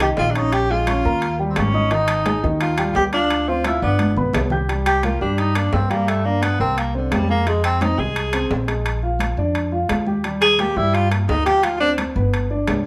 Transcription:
Already playing: C2
0.00 D#3 D#4 G4 D#5, high conga, high timbale
0.17 A#1 F4, high conga, low timbale
0.31 D4
0.35 C#4 D#4 C#5 C#6, high conga, high timbale
0.52 G4, high conga, high timbale
0.70 G#3 F4 G#4 G#5, high conga
0.87 C#4 C#5 C#6, high conga, high timbale, low timbale
1.05 D#2 A#3 A#4 A#5, high conga
1.22 high conga, high timbale
1.39 G3 G4 G5, high conga
1.50 C4
1.56 G#1 C#4, high conga, high timbale, low timbale
1.74 D#4 D#5 D#6, high conga
1.91 D#3 D#4 D#5, high timbale
2.08 high conga, high timbale
2.26 G#3 G#4 G#5, high conga, high timbale, low timbale
2.43 D#2 D#3 D#4 D#5, high conga
2.61 F4, high conga, high timbale
2.78 G3 G4 G5, high conga, high timbale
2.95 D2 G4, high conga, low timbale
3.13 D4 F4 F5 F6, high conga, high timbale
3.30 high conga, high timbale
3.48 C4 F4 C5 C6, high conga
3.64 E4 F4 F5 F6, high conga, high timbale, low timbale
3.82 G1 B3 D4 D5 D6, high conga
3.99 high conga, high timbale
4.17 B1 B3 B4 B5, low conga
4.33 C2, low conga, high timbale, low timbale
4.50 G4 G5 G6, low conga
4.69 G3 G4, high conga, high timbale
4.86 G4, high conga, high timbale
5.03 A#3 F4 A#4, high conga, high timbale, low timbale
5.20 G2 G3 D4 G4, high conga
5.38 D#4, high conga, high timbale
5.55 A#3 D4 A#4, high conga, high timbale
5.73 G2 C4, high conga, low timbale
5.90 G3 A#3 G4, high conga, high timbale
6.07 A3, high conga, high timbale
6.25 A#3 D4 D5, high conga
6.42 B3, high conga, high timbale, low timbale
6.60 C2 A#3 C4 A#4, high conga
6.77 A#3, high conga, high timbale
6.94 D3 C4 C5, high conga
7.11 F2 G3, high conga, high timbale, low timbale
7.29 A#3 G#4 G#5, high conga
7.47 G#3 G#4, high timbale
7.64 C4, high conga, high timbale
7.81 C4 D#4 C5, high conga, high timbale, low timbale
7.99 C2 G#3 G#4, high conga
8.16 high conga, high timbale
8.33 C4 C5, high conga, high timbale
8.50 A#1, high conga, low timbale
8.67 G#3 G#4, high conga, high timbale
8.85 high conga, high timbale
9.03 F4 F5, high conga
9.19 high conga, high timbale, low timbale
9.37 F2 D4 D5, high conga
9.54 high conga, high timbale
9.72 F4 F5, high conga
9.89 D#2, high conga, high timbale, low timbale
10.07 G4 G5, high conga
10.24 G3 G4, high conga, high timbale
10.42 G#4, high conga, high timbale
10.59 A#3 G4 A#4, high conga, high timbale, low timbale
10.76 G2 G3 E4 G4, high conga
10.94 F4, high conga, high timbale
11.10 A#3 A#4, high conga, high timbale
11.28 D2 D#4, high conga, low timbale
11.45 F3 F4 G4, high conga, high timbale
11.63 F4, high conga, high timbale
11.80 C4 D4 C5, high conga
11.98 high conga, high timbale, low timbale
12.16 G1 B3 B4, high conga
12.34 high conga, high timbale
12.50 D4 D5, high conga
12.67 C2, high conga, high timbale, low timbale

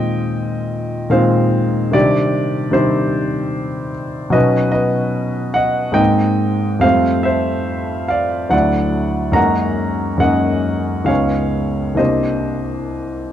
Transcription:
Already playing: A#2 D#3 G#3 C4 F4 D#5 G5
1.10 A#2 D#3 G#3 C4 F4 C5 F5
1.91 C3 D#3 G3 C4 D4 G4 D5
2.71 C3 D#3 G3 C4 D4 G4 C5
4.30 B2 F#3 B3 C#4 D#4 B4 D#5
4.72 B4 D#5
5.54 D#5 F#5
5.92 G#2 G#3 A#3 C4 D#4 D#5 G5
6.79 F2 G3 A3 C4 F4 C5 F5
7.23 C5 E5
8.08 D5 F5
8.49 D2 F#3 A3 D4 E4 D5 F#5
9.32 F#2 G#3 A#3 C#4 D#4 F#5 A#5
10.18 F#2 G#3 A#3 C#4 D#4 D#5 F#5
11.04 C#2 G#3 B3 C#4 D#4 C#5 F5
11.94 C2 A#3 C4 D4 G4 D#5
11.99 C5

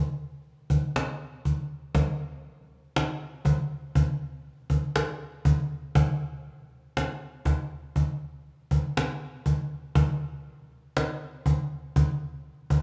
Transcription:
0.70 cajon bass
0.96 cajon slap
1.45 cajon bass
1.95 cajon bass
2.96 cajon slap
3.45 cajon bass
3.95 cajon bass
4.70 cajon bass
4.96 cajon slap
5.45 cajon bass
5.95 cajon bass
6.97 cajon slap
7.45 cajon bass
7.96 cajon bass
8.71 cajon bass
8.97 cajon slap
9.46 cajon bass
9.95 cajon bass
10.97 cajon slap
11.46 cajon bass
11.96 cajon bass
12.70 cajon bass

